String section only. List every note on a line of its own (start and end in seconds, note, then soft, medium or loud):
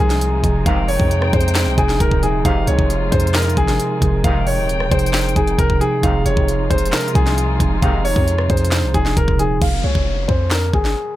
0.00 5.99 C3 medium
0.00 5.99 G#3 medium
0.00 5.99 D#4 medium
0.00 0.62 F4 medium
0.66 2.43 G5 medium
2.45 4.22 F4 medium
4.24 6.02 G5 medium
6.03 9.58 C3 medium
6.03 9.58 G#3 medium
6.03 9.58 D#4 medium
6.03 9.58 F4 medium